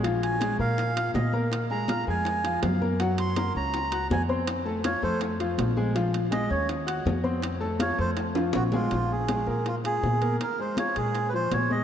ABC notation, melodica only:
X:1
M:4/4
L:1/16
Q:1/4=162
K:Bbm
V:1 name="Melodica"
z2 a4 f6 e2 z2 | z2 b4 a6 f2 z2 | z2 c'4 b6 a2 z2 | z4 d2 c2 z8 |
z4 e2 d2 z8 | z4 d2 c2 z4 G2 F2- | F2 A4 A2 F2 A6 | B2 c2 d2 A3- A/2 _c/2 =c2 d2 e2 |]